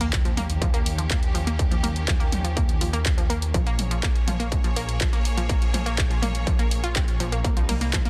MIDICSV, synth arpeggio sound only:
0, 0, Header, 1, 2, 480
1, 0, Start_track
1, 0, Tempo, 487805
1, 1566, Time_signature, 4, 2, 24, 8
1, 7967, End_track
2, 0, Start_track
2, 0, Title_t, "Synth arpeggio sound"
2, 0, Program_c, 0, 84
2, 7, Note_on_c, 0, 58, 103
2, 56, Note_off_c, 0, 58, 0
2, 246, Note_on_c, 0, 53, 81
2, 295, Note_off_c, 0, 53, 0
2, 365, Note_on_c, 0, 58, 110
2, 415, Note_off_c, 0, 58, 0
2, 605, Note_on_c, 0, 53, 83
2, 655, Note_off_c, 0, 53, 0
2, 726, Note_on_c, 0, 58, 109
2, 775, Note_off_c, 0, 58, 0
2, 965, Note_on_c, 0, 53, 75
2, 1015, Note_off_c, 0, 53, 0
2, 1085, Note_on_c, 0, 58, 105
2, 1135, Note_off_c, 0, 58, 0
2, 1324, Note_on_c, 0, 53, 78
2, 1375, Note_off_c, 0, 53, 0
2, 1446, Note_on_c, 0, 58, 103
2, 1495, Note_off_c, 0, 58, 0
2, 1685, Note_on_c, 0, 53, 83
2, 1735, Note_off_c, 0, 53, 0
2, 1804, Note_on_c, 0, 58, 108
2, 1854, Note_off_c, 0, 58, 0
2, 2044, Note_on_c, 0, 53, 86
2, 2094, Note_off_c, 0, 53, 0
2, 2164, Note_on_c, 0, 58, 104
2, 2214, Note_off_c, 0, 58, 0
2, 2405, Note_on_c, 0, 53, 79
2, 2455, Note_off_c, 0, 53, 0
2, 2524, Note_on_c, 0, 58, 102
2, 2575, Note_off_c, 0, 58, 0
2, 2766, Note_on_c, 0, 53, 76
2, 2815, Note_off_c, 0, 53, 0
2, 2885, Note_on_c, 0, 58, 108
2, 2935, Note_off_c, 0, 58, 0
2, 3126, Note_on_c, 0, 53, 80
2, 3175, Note_off_c, 0, 53, 0
2, 3245, Note_on_c, 0, 58, 110
2, 3295, Note_off_c, 0, 58, 0
2, 3486, Note_on_c, 0, 53, 80
2, 3535, Note_off_c, 0, 53, 0
2, 3607, Note_on_c, 0, 58, 110
2, 3656, Note_off_c, 0, 58, 0
2, 3847, Note_on_c, 0, 53, 78
2, 3896, Note_off_c, 0, 53, 0
2, 3967, Note_on_c, 0, 58, 102
2, 4016, Note_off_c, 0, 58, 0
2, 4207, Note_on_c, 0, 53, 79
2, 4256, Note_off_c, 0, 53, 0
2, 4326, Note_on_c, 0, 58, 106
2, 4376, Note_off_c, 0, 58, 0
2, 4567, Note_on_c, 0, 53, 80
2, 4616, Note_off_c, 0, 53, 0
2, 4687, Note_on_c, 0, 58, 103
2, 4736, Note_off_c, 0, 58, 0
2, 4926, Note_on_c, 0, 53, 84
2, 4975, Note_off_c, 0, 53, 0
2, 5047, Note_on_c, 0, 58, 104
2, 5096, Note_off_c, 0, 58, 0
2, 5287, Note_on_c, 0, 53, 80
2, 5336, Note_off_c, 0, 53, 0
2, 5405, Note_on_c, 0, 58, 101
2, 5455, Note_off_c, 0, 58, 0
2, 5645, Note_on_c, 0, 53, 79
2, 5695, Note_off_c, 0, 53, 0
2, 5765, Note_on_c, 0, 58, 104
2, 5815, Note_off_c, 0, 58, 0
2, 6005, Note_on_c, 0, 53, 78
2, 6055, Note_off_c, 0, 53, 0
2, 6124, Note_on_c, 0, 58, 105
2, 6174, Note_off_c, 0, 58, 0
2, 6366, Note_on_c, 0, 53, 86
2, 6415, Note_off_c, 0, 53, 0
2, 6485, Note_on_c, 0, 58, 106
2, 6535, Note_off_c, 0, 58, 0
2, 6727, Note_on_c, 0, 65, 108
2, 6809, Note_off_c, 0, 65, 0
2, 6846, Note_on_c, 0, 60, 105
2, 6928, Note_off_c, 0, 60, 0
2, 7086, Note_on_c, 0, 53, 81
2, 7168, Note_off_c, 0, 53, 0
2, 7205, Note_on_c, 0, 58, 78
2, 7255, Note_off_c, 0, 58, 0
2, 7326, Note_on_c, 0, 58, 99
2, 7440, Note_off_c, 0, 58, 0
2, 7446, Note_on_c, 0, 53, 83
2, 7496, Note_off_c, 0, 53, 0
2, 7565, Note_on_c, 0, 58, 104
2, 7615, Note_off_c, 0, 58, 0
2, 7686, Note_on_c, 0, 58, 103
2, 7800, Note_off_c, 0, 58, 0
2, 7805, Note_on_c, 0, 53, 86
2, 7855, Note_off_c, 0, 53, 0
2, 7926, Note_on_c, 0, 58, 106
2, 7967, Note_off_c, 0, 58, 0
2, 7967, End_track
0, 0, End_of_file